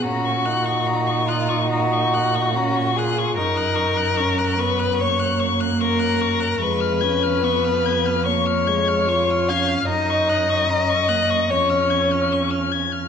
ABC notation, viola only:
X:1
M:4/4
L:1/8
Q:1/4=74
K:F#
V:1 name="Viola"
C D4- D C E | D2 C B, A,4 | G, C B,2 A, G, E C | D2 C A, C4 |]